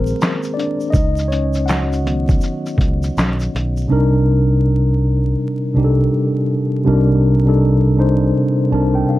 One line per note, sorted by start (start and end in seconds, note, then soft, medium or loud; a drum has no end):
0.00 0.13 A#1 medium
0.00 0.96 D#3 medium
0.00 0.96 G#3 medium
0.00 0.53 A#3 medium
0.00 0.96 C4 medium
0.00 0.96 G#4 medium
0.00 0.58 A#4 medium
0.00 0.96 C5 medium
0.06 shaker medium
0.21 snare loud
0.21 clap medium
0.21 shaker medium
0.43 shaker soft
0.54 0.91 D4 medium
0.54 0.94 D5 loud
0.59 closed hi-hat medium
0.59 shaker soft
0.81 shaker soft
0.90 2.38 C#2 medium
0.90 1.28 D#4 medium
0.90 1.30 D#5 loud
0.90 kick loud
0.90 shaker medium
0.95 shaker medium
1.17 shaker soft
1.19 shaker soft
1.28 1.66 C#4 medium
1.28 1.68 C#5 medium
1.32 closed hi-hat medium
1.32 shaker soft
1.54 shaker soft
1.66 3.50 F#4 medium
1.66 3.48 F#5 medium
1.66 shaker medium
1.70 snare loud
1.70 clap medium
1.93 shaker soft
2.05 3.86 D#3 medium
2.05 3.86 F#3 soft
2.05 3.87 B3 medium
2.05 closed hi-hat medium
2.05 shaker soft
2.29 kick medium
2.29 shaker soft
2.30 shaker soft
2.41 shaker medium
2.43 shaker medium
2.66 shaker soft
2.78 3.09 C#2 medium
2.78 kick medium
2.78 closed hi-hat medium
2.78 shaker medium
3.03 shaker medium
3.03 shaker soft
3.17 3.47 B1 medium
3.17 snare loud
3.17 clap medium
3.17 shaker medium
3.40 shaker soft
3.55 3.85 B1 medium
3.55 closed hi-hat medium
3.55 shaker soft
3.77 shaker soft
3.88 5.35 C2 medium
3.88 5.06 C3 loud
3.88 5.06 G3 medium
3.88 5.07 D4 loud
3.88 5.07 D#4 loud
3.92 5.08 A#4 loud
5.74 6.07 C2 medium
5.74 6.64 C3 medium
5.74 6.65 G3 medium
5.74 6.65 D4 medium
5.74 6.66 D#4 medium
5.78 5.85 G4 medium
5.84 6.69 A4 medium
6.84 8.31 C2 loud
6.84 7.30 C3 loud
6.84 7.31 G3 loud
6.84 7.31 D4 loud
6.84 7.32 D#4 loud
6.84 7.32 A#4 loud
7.45 7.87 C3 medium
7.45 7.88 G3 medium
7.45 7.88 D4 medium
7.45 7.89 D#4 medium
7.45 7.89 A4 loud
7.96 8.58 C3 medium
7.96 8.59 G3 medium
7.96 8.60 D4 medium
7.96 8.60 D#4 medium
7.96 8.60 C5 loud
8.70 9.03 C2 medium
8.70 9.19 C3 medium
8.70 9.19 G3 medium
8.70 9.19 D4 medium
8.70 9.19 D#4 medium
8.70 8.93 A5 medium
8.74 9.19 A#4 medium
8.95 9.08 G5 medium
9.09 9.19 F5 medium